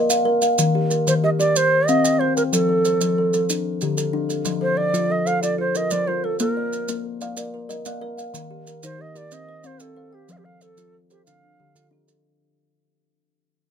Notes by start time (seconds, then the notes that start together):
Already playing: A#4 D#5
0.10 F5, maracas
0.25 A#4
0.42 F5, maracas
0.58 D#3, maracas
0.75 G4
0.90 A#4, maracas
1.07 D#3 C5, maracas
1.24 G4 D#5
1.39 G4 D5, maracas
1.56 C5, maracas
1.87 C4 D#5 F5, maracas
2.04 G5, maracas
2.19 C5
2.37 A#4 G5, maracas
2.53 F3 A4, maracas
2.69 A4
2.85 C5, maracas
3.01 F3, maracas
3.18 A4
3.33 A4, maracas
3.50 D4, maracas
3.81 D3 G4, maracas
3.97 A4, maracas
4.13 D4
4.29 A4, maracas
4.45 F3, maracas
4.61 A4 C5
4.77 C5 D5
4.94 F3 F4, maracas
5.10 A4 D#5
5.26 A4 C5 F5, maracas
5.43 F4 A4 D5, maracas
5.58 F4 C5
5.75 F4 A#4 D#5, maracas
5.91 F3 A4 C5 D5, maracas
6.08 F4 A#4 C5
6.24 A4 C5
6.39 A#3 A#4, maracas
6.57 D5
6.73 maracas
6.88 A#3 A#4, maracas
7.21 D5 F5, maracas
7.37 A#4 D5, maracas
7.54 A#4
7.69 A#4 D#5, maracas
7.85 A#3 D5 F5, maracas
8.01 A#4 D#5
8.18 F5, maracas
8.34 D#3, maracas
8.51 G4
8.67 A#4, maracas
8.83 D#3 D#4 C5, maracas
8.99 G4 D#5
9.15 G4 A#4 D5, maracas
9.31 C4 C5 D#5, maracas
9.49 C5
9.64 C4 C5 F5, maracas
9.80 C4 A4 D#5 G5, maracas
9.96 C5 F5
10.12 G4 G5
10.29 F3 F5, maracas
10.38 G4
10.45 A4 F5
10.61 A4 C5, maracas
10.77 F3 F4, maracas
10.94 A4
11.10 G4 A4 C5, maracas
11.26 D3 D4 F5, maracas
11.43 D4
11.60 D3 G4
11.75 D3 F4 A4, maracas
11.91 D4 G4
12.08 A4, maracas